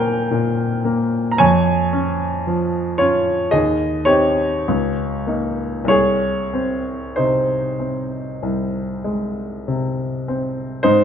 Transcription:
0.00 0.31 A#2 medium
0.00 0.85 A#3 medium
0.00 1.29 A#4 medium
0.00 1.43 C5 medium
0.00 1.39 C#5 medium
0.00 1.32 G5 loud
0.00 1.38 G#5 medium
0.00 1.32 A#5 loud
0.31 1.18 A#2 medium
0.85 1.39 A#3 medium
1.32 1.39 A#5 medium
1.38 3.50 F2 medium
1.38 2.96 C#5 medium
1.38 3.00 G#5 loud
1.93 2.79 C#4 medium
2.47 3.32 F3 medium
2.98 3.54 C#4 medium
2.98 3.49 F4 medium
2.98 3.52 C#5 medium
3.51 4.63 D#2 medium
3.51 4.04 G#4 medium
3.51 4.08 D#5 medium
4.05 4.62 C4 medium
4.05 4.62 D#4 medium
4.05 5.85 G4 medium
4.05 5.87 C#5 medium
4.68 5.87 C#2 medium
5.27 5.86 A#3 soft
5.27 5.87 D#4 soft
5.84 8.37 C2 medium
5.84 7.17 C#5 medium
5.90 7.14 G#4 medium
6.54 7.55 C4 medium
7.16 8.19 C3 soft
7.16 10.23 D#4 medium
7.16 10.27 C5 medium
7.80 8.80 C4 soft
8.43 10.82 C2 soft
9.04 10.03 G#3 soft
9.68 10.64 C3 soft
10.28 10.86 C4 soft
10.83 11.04 G#2 medium
10.83 11.04 D#4 medium
10.83 11.04 C5 medium

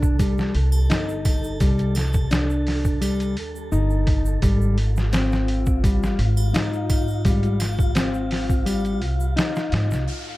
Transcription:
0.00 0.51 C2 medium
0.00 0.16 D4 medium
0.00 4.44 A4 medium
0.00 kick medium
0.00 shaker medium
0.19 0.53 G3 medium
0.19 kick loud
0.19 open hi-hat medium
0.19 shaker medium
0.38 snare soft
0.38 shaker soft
0.55 0.86 C2 medium
0.55 open hi-hat medium
0.72 triangle medium
0.72 shaker medium
0.90 1.58 G1 medium
0.90 1.57 D#4 medium
0.90 snare loud
0.90 open hi-hat medium
0.90 shaker medium
1.09 shaker soft
1.25 kick medium
1.25 open hi-hat medium
1.25 triangle medium
1.44 shaker medium
1.60 3.37 C2 medium
1.60 1.94 G3 medium
1.60 kick loud
1.60 open hi-hat medium
1.60 shaker medium
1.79 closed hi-hat soft
1.79 shaker soft
1.95 snare soft
1.95 open hi-hat medium
1.95 triangle medium
2.13 kick loud
2.13 shaker medium
2.31 2.98 D4 medium
2.31 snare loud
2.31 open hi-hat medium
2.31 shaker medium
2.50 shaker soft
2.67 snare soft
2.67 open hi-hat medium
2.85 kick medium
2.85 shaker medium
3.01 3.35 G3 medium
3.01 open hi-hat medium
3.01 triangle medium
3.01 shaker medium
3.20 closed hi-hat soft
3.20 shaker soft
3.37 3.68 D#2 medium
3.37 open hi-hat medium
3.56 shaker medium
3.72 4.40 G1 medium
3.72 4.39 D#4 medium
3.72 shaker medium
3.90 shaker soft
4.07 kick medium
4.07 open hi-hat medium
4.26 shaker medium
4.42 6.16 G#1 medium
4.42 4.76 G3 medium
4.42 10.09 F4 medium
4.42 kick loud
4.42 open hi-hat medium
4.42 shaker medium
4.61 shaker soft
4.78 open hi-hat medium
4.96 snare soft
4.96 shaker medium
5.13 5.80 C4 medium
5.13 snare loud
5.13 open hi-hat medium
5.13 shaker medium
5.32 snare soft
5.32 shaker soft
5.48 open hi-hat medium
5.66 kick medium
5.66 shaker medium
5.83 6.17 G3 medium
5.83 kick loud
5.83 open hi-hat medium
5.83 shaker medium
6.03 snare soft
6.03 shaker soft
6.19 6.50 G#1 medium
6.19 open hi-hat medium
6.37 triangle medium
6.37 shaker medium
6.54 7.22 G#2 medium
6.54 7.22 D#4 medium
6.54 snare loud
6.54 open hi-hat medium
6.54 shaker medium
6.73 shaker soft
6.90 kick medium
6.90 open hi-hat medium
6.90 triangle medium
7.08 shaker medium
7.25 9.02 G#1 medium
7.25 7.59 G3 medium
7.25 kick loud
7.25 open hi-hat medium
7.25 shaker medium
7.43 closed hi-hat soft
7.43 shaker soft
7.60 snare soft
7.60 open hi-hat medium
7.60 triangle medium
7.79 kick loud
7.79 shaker medium
7.95 8.63 C4 medium
7.95 snare loud
7.95 open hi-hat medium
7.95 shaker medium
8.14 shaker soft
8.31 snare soft
8.31 open hi-hat medium
8.49 kick medium
8.49 shaker medium
8.66 9.00 G3 medium
8.66 open hi-hat medium
8.66 triangle medium
8.66 shaker medium
8.85 closed hi-hat soft
8.85 shaker soft
9.02 9.33 C2 medium
9.02 open hi-hat medium
9.20 shaker medium
9.37 10.04 D#4 loud
9.37 snare loud
9.37 open hi-hat medium
9.37 shaker medium
9.55 snare soft
9.55 shaker soft
9.72 9.89 G#2 medium
9.72 snare loud
9.72 open hi-hat medium
9.90 10.05 C2 medium
9.90 snare soft
9.90 shaker medium
10.07 10.37 A3 medium
10.07 10.37 A4 medium
10.07 downlifter medium

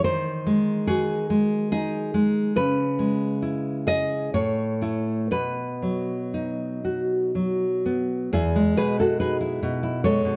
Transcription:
0.04 2.51 D#3 medium
0.04 0.84 C5 medium
0.47 1.29 G#3 medium
0.87 2.13 F#4 medium
0.87 1.68 G#4 medium
1.30 2.13 G#3 medium
1.72 2.55 D#4 soft
1.72 2.52 G#4 medium
2.14 2.56 G#3 medium
2.56 4.29 C#3 medium
2.56 3.83 B4 medium
2.99 4.33 G#3 soft
3.42 4.33 E4 medium
3.87 4.33 G#4 medium
3.87 4.31 D#5 loud
4.34 5.28 A2 medium
4.34 5.27 C#5 medium
4.81 5.27 A3 soft
4.81 5.27 E4 soft
5.31 8.28 B2 medium
5.31 7.31 B4 medium
5.82 7.34 F#3 soft
6.34 7.85 D#4 soft
6.85 8.32 F#4 medium
7.35 8.32 F#3 soft
7.86 8.32 B3 soft
8.33 8.76 E2 medium
8.33 8.74 E4 medium
8.33 8.75 G#4 medium
8.56 9.84 G#3 medium
8.77 9.61 B2 medium
8.77 8.97 G#4 medium
8.77 8.98 B4 medium
8.99 9.19 E4 soft
8.99 9.20 F#4 medium
8.99 9.19 A4 medium
9.20 10.36 D#4 soft
9.20 10.01 G#4 medium
9.20 9.40 B4 medium
9.41 9.82 E4 medium
9.63 10.24 B2 medium
9.83 10.04 E4 medium
10.04 10.36 G#3 medium
10.04 10.36 A4 medium
10.04 10.36 C#5 medium
10.25 10.36 B2 medium

